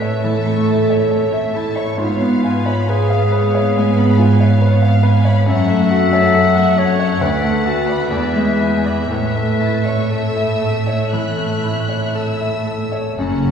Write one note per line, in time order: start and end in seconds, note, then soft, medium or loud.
0.00 0.20 A2 soft
0.00 1.95 A2 soft
0.00 0.46 A3 soft
0.00 1.95 A3 soft
0.00 0.68 E4 soft
0.00 1.11 A4 soft
0.00 0.26 B4 soft
0.00 0.02 C#5 soft
0.00 0.37 C#5 soft
0.00 1.32 E5 soft
0.00 1.95 E5 soft
0.00 0.25 E5 soft
0.24 0.59 E3 soft
0.24 1.54 A4 medium
0.24 0.44 A5 soft
0.46 0.80 A3 soft
0.46 0.67 C#6 soft
0.67 1.02 E4 soft
0.67 0.89 A5 soft
0.88 1.24 C#5 soft
0.88 1.10 E5 soft
1.10 1.46 A4 soft
1.10 1.32 C#5 soft
1.32 1.54 E5 soft
1.32 1.68 E5 soft
1.54 2.00 E4 soft
1.54 1.90 A4 soft
1.54 1.76 A5 soft
1.76 1.98 C#5 soft
1.76 1.99 C#6 soft
1.98 3.72 G#2 soft
1.98 5.48 G#2 soft
1.98 5.48 B3 soft
1.98 2.90 F4 medium
1.98 2.20 C#5 soft
1.98 5.44 F5 soft
2.20 2.57 B3 soft
2.20 2.43 F5 soft
2.42 2.79 F4 soft
2.42 2.65 G#5 soft
2.65 3.01 C#5 soft
2.65 2.88 B5 soft
2.87 4.62 G#4 medium
2.87 3.24 B4 soft
2.87 3.10 G#5 soft
3.10 3.32 F5 soft
3.10 3.46 F5 soft
3.31 3.67 B4 soft
3.31 3.54 C#5 soft
3.54 3.89 C#5 soft
3.54 3.76 F5 soft
3.76 4.11 G#3 soft
3.76 3.96 G#5 soft
3.97 4.32 B3 soft
3.97 4.19 B5 soft
4.18 4.53 F4 soft
4.18 4.40 G#5 soft
4.40 4.75 C#5 soft
4.40 4.61 F5 soft
4.61 4.96 B4 soft
4.61 4.83 C#5 soft
4.82 5.17 F5 soft
4.82 5.05 F5 soft
5.03 5.38 B4 soft
5.03 5.26 G#5 soft
5.25 5.47 C#5 soft
5.25 5.48 B5 soft
5.46 7.17 F#2 medium
5.46 7.22 F#2 medium
5.46 8.07 A3 soft
5.46 5.67 C#5 soft
5.46 6.80 E5 medium
5.46 8.07 F#5 soft
5.68 6.04 A3 soft
5.68 5.91 E5 soft
5.90 6.26 F#4 soft
5.90 6.13 F#5 soft
6.12 6.48 C#5 soft
6.12 6.34 A5 soft
6.34 6.69 A4 soft
6.34 6.56 F#5 soft
6.56 6.78 E5 soft
6.56 6.91 F#5 soft
6.78 7.13 A4 soft
6.78 7.00 C#5 soft
6.78 7.23 C#5 medium
6.98 7.21 C#5 soft
6.98 7.21 E5 soft
7.20 8.08 D2 soft
7.20 8.09 D2 soft
7.20 9.10 B4 medium
7.20 7.41 D5 soft
7.41 7.79 A3 soft
7.41 7.65 F#5 soft
7.66 8.02 F#4 soft
7.66 7.88 A5 soft
7.87 8.11 D5 soft
7.87 8.10 B5 soft
8.11 9.07 E2 soft
8.11 9.10 E2 soft
8.11 9.10 G#3 soft
8.11 8.33 D5 soft
8.11 12.95 E5 soft
8.35 8.75 G#3 soft
8.35 8.59 E5 soft
8.60 9.00 E4 soft
8.60 8.85 G#5 soft
8.84 9.10 D5 soft
8.84 9.10 B5 soft
9.10 12.91 A2 soft
9.10 11.08 A2 soft
9.10 12.95 A3 soft
9.10 10.11 B4 medium
9.10 9.34 C#5 soft
9.34 9.76 A3 soft
9.34 9.60 E5 soft
9.60 10.01 E4 soft
9.60 9.85 A5 soft
9.85 10.25 C#5 soft
9.85 10.11 C#6 soft
10.09 12.14 A4 soft
10.09 10.51 A4 soft
10.09 11.08 E6 soft
10.36 10.76 E5 soft
10.61 11.02 A4 soft
10.87 11.28 C#5 soft
11.12 11.54 E3 soft
11.12 12.15 F#6 soft
11.39 11.80 A3 soft
11.64 12.04 E4 soft
11.89 12.30 C#5 soft
12.14 12.56 A4 soft
12.14 13.17 E6 soft
12.41 12.82 E5 soft
12.67 13.08 A4 soft
12.92 13.17 C#5 soft
13.17 13.51 F#1 soft
13.17 13.51 F#2 soft
13.17 13.51 C#4 soft
13.17 13.51 A4 soft
13.17 13.51 F#5 soft